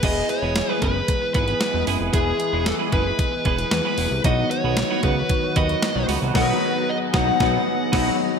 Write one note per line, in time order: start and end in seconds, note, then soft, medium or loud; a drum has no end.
0.02 0.23 E1 loud
0.02 4.20 E3 medium
0.02 2.09 G#3 medium
0.02 4.20 G#3 medium
0.02 2.09 B3 medium
0.02 0.27 B3 medium
0.02 4.20 B3 medium
0.02 2.10 E4 medium
0.02 0.28 E4 medium
0.02 0.10 F#4 medium
0.02 4.20 G#4 medium
0.02 0.28 G#4 medium
0.02 0.28 B4 medium
0.02 0.30 D#5 loud
0.02 kick loud
0.02 closed hi-hat loud
0.02 crash medium
0.10 2.13 G#4 medium
0.29 0.73 C#5 medium
0.29 muted clean electric guitar stroke soft
0.29 closed hi-hat medium
0.42 0.62 E1 medium
0.42 0.55 B3 soft
0.42 0.55 E4 medium
0.42 0.55 G#4 medium
0.42 0.56 B4 medium
0.56 muted clean electric guitar stroke soft
0.56 snare loud
0.56 closed hi-hat medium
0.69 0.81 B3 medium
0.69 0.82 E4 medium
0.69 0.82 G#4 medium
0.69 0.82 B4 medium
0.82 1.02 F#1 medium
0.82 0.99 B3 medium
0.82 0.95 E4 medium
0.82 0.95 G#4 medium
0.82 1.33 B4 medium
0.82 0.95 B4 medium
0.82 kick medium
0.82 closed hi-hat medium
0.96 muted clean electric guitar stroke soft
1.08 muted clean electric guitar stroke soft
1.08 kick medium
1.08 closed hi-hat loud
1.22 muted clean electric guitar stroke soft
1.34 1.54 G#1 medium
1.34 1.48 B3 medium
1.34 1.48 E4 medium
1.34 1.47 G#4 medium
1.34 1.83 B4 medium
1.34 1.47 B4 medium
1.34 kick medium
1.34 closed hi-hat medium
1.48 1.60 B3 soft
1.48 1.61 E4 medium
1.48 1.61 G#4 medium
1.48 1.61 B4 medium
1.48 closed hi-hat soft
1.61 muted clean electric guitar stroke soft
1.61 snare loud
1.61 closed hi-hat medium
1.74 1.84 E1 medium
1.74 muted clean electric guitar stroke soft
1.87 1.97 F#1 medium
1.87 2.00 B3 medium
1.87 2.00 E4 medium
1.87 2.00 G#4 medium
1.87 1.99 B4 medium
1.87 open hi-hat medium
2.00 2.10 F1 medium
2.00 2.12 B3 soft
2.00 2.13 E4 medium
2.00 2.13 G#4 medium
2.00 2.14 B4 medium
2.13 2.33 E1 loud
2.13 4.20 G#3 medium
2.13 4.20 B3 medium
2.13 2.38 B3 medium
2.13 4.20 E4 medium
2.13 2.38 E4 medium
2.13 2.66 G#4 medium
2.13 2.38 G#4 medium
2.13 2.38 B4 medium
2.13 4.21 B4 medium
2.13 kick loud
2.13 closed hi-hat loud
2.39 muted clean electric guitar stroke soft
2.39 closed hi-hat medium
2.53 2.73 E1 medium
2.53 2.65 B3 medium
2.53 2.65 E4 medium
2.53 2.66 G#4 medium
2.53 2.66 B4 medium
2.66 2.74 A4 medium
2.66 snare loud
2.66 closed hi-hat loud
2.79 2.92 B3 medium
2.79 2.92 E4 medium
2.79 2.92 G#4 medium
2.79 2.93 B4 medium
2.92 3.12 F#1 medium
2.92 3.09 B3 medium
2.92 3.05 E4 medium
2.92 3.05 G#4 medium
2.92 3.71 B4 medium
2.92 3.04 B4 medium
2.92 kick medium
2.92 closed hi-hat medium
3.06 muted clean electric guitar stroke soft
3.19 muted clean electric guitar stroke soft
3.19 kick medium
3.19 closed hi-hat medium
3.32 muted clean electric guitar stroke soft
3.45 3.65 E1 loud
3.45 3.59 B3 medium
3.45 3.58 E4 medium
3.45 3.58 G#4 medium
3.45 3.57 B4 loud
3.45 kick medium
3.45 closed hi-hat medium
3.58 3.71 B3 soft
3.58 3.71 E4 soft
3.58 3.71 G#4 medium
3.58 3.71 B4 medium
3.58 closed hi-hat soft
3.71 3.81 E2 loud
3.71 4.21 B4 medium
3.71 muted clean electric guitar stroke soft
3.71 snare loud
3.71 closed hi-hat medium
3.85 3.96 B3 medium
3.85 3.97 E4 medium
3.85 3.97 G#4 medium
3.85 3.98 B4 medium
3.98 4.08 E1 medium
3.98 4.14 B3 medium
3.98 4.11 E4 medium
3.98 4.11 G#4 medium
3.98 4.10 B4 medium
3.98 open hi-hat medium
4.11 4.21 C2 medium
4.11 muted clean electric guitar stroke soft
4.24 4.44 B1 loud
4.24 8.39 D#3 medium
4.24 8.39 F#3 medium
4.24 6.31 F#3 medium
4.24 8.39 B3 medium
4.24 6.31 B3 medium
4.24 4.49 B3 medium
4.24 4.49 D#4 medium
4.24 6.31 D#4 medium
4.24 6.33 F#4 medium
4.24 4.49 F#4 medium
4.24 6.32 F#4 medium
4.24 4.49 B4 loud
4.24 4.51 D#5 loud
4.24 kick loud
4.24 closed hi-hat medium
4.51 5.00 C#5 loud
4.51 muted clean electric guitar stroke soft
4.51 closed hi-hat medium
4.64 4.83 B1 medium
4.64 4.77 B3 medium
4.64 4.77 D#4 medium
4.64 4.77 F#4 medium
4.64 4.78 B4 medium
4.77 snare loud
4.77 closed hi-hat loud
4.90 5.03 B3 medium
4.90 5.03 D#4 medium
4.90 5.04 F#4 medium
4.90 5.04 B4 medium
5.03 5.23 C#2 loud
5.03 5.20 B3 medium
5.03 5.17 D#4 medium
5.03 5.16 F#4 medium
5.03 5.58 B4 medium
5.03 5.16 B4 medium
5.03 kick medium
5.03 closed hi-hat medium
5.17 muted clean electric guitar stroke soft
5.29 muted clean electric guitar stroke soft
5.29 kick loud
5.29 closed hi-hat medium
5.43 muted clean electric guitar stroke soft
5.56 5.76 D#2 medium
5.56 5.70 B3 medium
5.56 5.69 D#4 medium
5.56 5.69 F#4 medium
5.56 5.68 B4 medium
5.56 6.05 D#5 medium
5.56 kick medium
5.56 closed hi-hat medium
5.69 5.81 B3 soft
5.69 5.82 D#4 medium
5.69 5.82 F#4 medium
5.69 5.82 B4 medium
5.69 closed hi-hat medium
5.83 muted clean electric guitar stroke soft
5.83 snare loud
5.83 closed hi-hat medium
5.96 6.05 B1 medium
5.96 muted clean electric guitar stroke medium
6.08 6.18 C#2 medium
6.08 6.21 B3 medium
6.08 6.21 D#4 medium
6.08 6.21 F#4 medium
6.08 6.20 B4 medium
6.08 open hi-hat medium
6.21 6.32 C2 medium
6.21 6.33 B3 medium
6.21 6.34 D#4 medium
6.21 6.34 F#4 medium
6.21 6.35 B4 medium
6.34 6.53 B1 loud
6.34 6.52 F#3 loud
6.34 6.53 B3 loud
6.34 6.53 D#4 loud
6.34 6.53 F#4 loud
6.34 6.54 F#4 loud
6.34 8.39 G#4 medium
6.34 6.53 B4 medium
6.34 6.90 B4 medium
6.34 kick loud
6.34 snare loud
6.34 crash medium
6.89 6.96 D#5 medium
7.13 7.32 B1 loud
7.13 7.31 F#3 loud
7.13 7.32 B3 loud
7.13 7.32 D#4 loud
7.13 7.32 F#4 loud
7.13 7.33 F#4 loud
7.13 7.32 B4 loud
7.13 8.15 F#5 loud
7.13 kick loud
7.13 snare loud
7.40 7.58 B1 loud
7.40 7.58 F#3 loud
7.40 7.58 B3 loud
7.40 7.58 D#4 medium
7.40 7.58 D#4 loud
7.40 7.59 F#4 loud
7.40 7.59 B4 loud
7.40 kick loud
7.40 snare loud
7.92 8.11 B1 loud
7.92 8.11 F#3 medium
7.92 8.11 B3 medium
7.92 8.11 B3 loud
7.92 8.11 D#4 loud
7.92 8.11 F#4 loud
7.92 8.10 B4 loud
7.92 kick loud
7.92 snare loud
7.92 crash medium